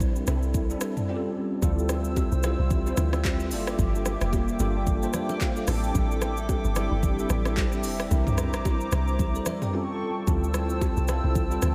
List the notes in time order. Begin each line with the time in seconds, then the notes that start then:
Already playing: A#1 G3 C4 D4 E4 A#4
0.00 kick, shaker
0.16 shaker
0.26 C2 G3 C4 D4 E4 A4, cross-stick, shaker
0.43 shaker
0.54 kick, shaker
0.69 G3 C4 D4 E4 A4, shaker
0.81 cross-stick, shaker
0.97 mid tom, shaker
1.08 G3 C4 C#4 F4 G4
1.16 A4
1.62 D2 G3 C4 E4 F4 A4 C5 E5 G5 E6, kick, low conga, shaker
1.79 shaker
1.89 cross-stick, low bongo, shaker
2.05 shaker
2.16 kick, high bongo, shaker
2.32 C2, shaker
2.43 G3 C4 E4 F4 C5, cross-stick, low bongo, shaker
2.59 C2
2.70 kick, low conga, shaker
2.85 G3 C4 E4 F4 C5, shaker
2.97 D2, cross-stick, low conga, shaker
3.13 cross-stick, low bongo, shaker
3.25 kick, clap, high bongo, shaker
3.40 shaker
3.51 G1 G3 A#3 D4 F4 A4 D6, open hi-hat, shaker
3.67 cross-stick, shaker
3.79 G1, kick, low conga, shaker
3.95 shaker
4.06 cross-stick, low bongo, shaker
4.21 F1, cross-stick, shaker
4.33 kick, high bongo, shaker
4.48 shaker
4.59 G1 G3 A#3 D4 F4 A4, low bongo, shaker
4.87 kick, low conga, shaker
5.02 G3 A#3 D4 F4 C5, shaker
5.13 A4 D5, cross-stick, low conga, shaker
5.29 A#4 E5, low bongo, shaker
5.41 C5 F5 G5, kick, clap, high bongo, shaker
5.56 A4 D5, shaker
5.67 A1 G3 C4 D4 E4 A4 E5 A5, cross-stick, open hi-hat, shaker
5.83 shaker
5.95 A1, kick, low conga, shaker
6.11 shaker
6.22 cross-stick, low bongo, shaker
6.37 shaker
6.49 kick, high bongo, shaker
6.64 G1, shaker
6.75 G3 C4 D4 E4 G4, cross-stick, low bongo, shaker
6.91 G1
7.03 kick, low conga, shaker
7.18 G3 C4 D4 E4 A4, shaker
7.30 A1, cross-stick, low conga, shaker
7.45 cross-stick, low bongo, shaker
7.57 G4 C5, kick, clap, high bongo, shaker
7.72 shaker
7.83 F1 A4 E5, open hi-hat, shaker
8.00 D5 G5, cross-stick, shaker
8.11 C2 G3 C4 D4 E4 A#4 C5 A#5 D6, kick, low conga, shaker
8.27 mid tom, shaker
8.38 cross-stick, low bongo, shaker
8.53 A#1, cross-stick, shaker
8.65 kick, high bongo, shaker
8.81 shaker
8.92 C2, cross-stick, low bongo, shaker
9.08 shaker
9.19 G4 C5, kick, low conga, shaker
9.35 A4 D5, shaker
9.46 A#4 E5, cross-stick, low conga, shaker
9.62 D5 G5, mid tom, low bongo, shaker
9.73 G3 C4 C#4 F4 A4 G5 A5 C#6
10.27 D2 G3 C4 E4 F4 A4 C5 E6, kick, low conga, shaker
10.44 shaker
10.54 cross-stick, low bongo, shaker
10.70 shaker
10.81 kick, high bongo, shaker
10.97 C2, shaker
11.08 G3 C4 E4 F4 A4, cross-stick, low bongo, shaker
11.24 C2
11.35 kick, low conga, shaker
11.50 G3 C4 E4 F4 C5, shaker
11.62 D2, cross-stick, low conga, shaker